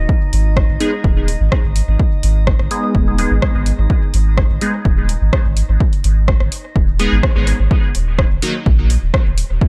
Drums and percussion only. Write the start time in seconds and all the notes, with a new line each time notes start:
0.09 kick
0.33 open hi-hat
0.57 kick, cross-stick
0.80 open hi-hat
1.04 kick
1.28 open hi-hat
1.52 kick, cross-stick
1.76 open hi-hat
2.00 kick
2.23 open hi-hat
2.47 kick, cross-stick
2.59 cross-stick
2.71 open hi-hat
2.95 kick
3.18 open hi-hat
3.42 kick, cross-stick
3.66 open hi-hat
3.90 kick
4.14 open hi-hat
4.38 kick, cross-stick
4.61 open hi-hat
4.85 kick
5.09 open hi-hat
5.33 kick, cross-stick
5.57 open hi-hat
5.80 kick
5.93 open hi-hat
6.04 open hi-hat
6.28 kick, cross-stick
6.40 cross-stick
6.52 open hi-hat
6.76 kick
6.99 open hi-hat
7.23 kick, cross-stick
7.47 open hi-hat
7.71 kick
7.95 open hi-hat
8.19 kick, cross-stick
8.42 open hi-hat
8.66 kick
8.90 open hi-hat
9.14 kick, cross-stick
9.38 open hi-hat
9.61 kick